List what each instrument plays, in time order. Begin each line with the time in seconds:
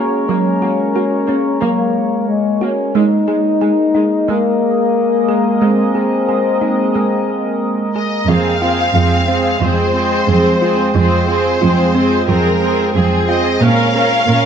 Already playing: synth drone G#3 A#3 A#4 C#5, french horn section C#4, synth pluck F#4
0.29 synth pluck F#3, viola section A#3, french horn section C#4
0.62 viola section A#3, synth pluck F#4
0.95 viola section A#3, synth pluck F#4
1.27 viola section A#3, synth pluck C#4
1.61 synth pluck F#3, viola section A#3, french horn section A#3
2.28 french horn section G#3
2.61 viola section A#3, french horn section C#4, synth pluck F#4
2.95 synth pluck G#3, viola section G#3, synth drone G#3 A#3 A#4 D#5, french horn section D#4
3.27 viola section G#3, synth pluck G#4
3.61 viola section G#3, synth pluck G#4
3.95 viola section G#3, synth pluck D#4
4.28 viola section G#3, synth pluck G#3, french horn section A#3
5.29 viola section G#3, synth pluck G#4
5.61 viola section G#3, synth pluck G#3, french horn section C4
5.95 viola section G#3, synth pluck G#4
6.29 viola section G#3, synth pluck G#4
6.61 viola section G#3, synth pluck D#4
6.94 viola section G#3, synth pluck G#3
7.94 viola section G#3, synth pluck G#4, violin section D#5
8.28 cello section F2, synth pluck F3, synth drone G#3 C4 F4 C5, viola section C4 G#4, violin section F5
8.61 viola section C4 G#4, synth pluck F4
8.95 cello section F2, viola section C4 G#4, synth pluck F4
9.28 synth pluck C4, viola section C4 G#4
9.62 cello section F2, synth pluck F3, viola section C4 G#4, violin section C5
9.94 viola section C4 G#4
10.27 cello section F2, viola section C4 G#4
10.61 viola section C4 G#4, synth pluck F4
10.95 cello section F2, synth pluck F3, viola section C4 G#4, violin section C5
11.28 viola section C4 G#4, synth pluck F4
11.61 cello section F2, viola section C4 G#4, synth pluck F4
11.95 synth pluck C4, viola section C4 G#4
12.27 cello section F2, synth pluck F3, viola section C4 G#4, violin section A#4
12.61 viola section C4 G#4
12.94 cello section F2, viola section C4 G#4, violin section G#4
13.28 viola section C4 G#4, synth pluck F4, violin section D#5
13.62 cello section A#2, synth drone A#3 C#4 F4 A#4, synth pluck A#3, viola section C#4 A#4, violin section F5
13.95 viola section C#4 A#4, synth pluck A#4
14.27 cello section A#2, viola section C#4 A#4, synth pluck A#4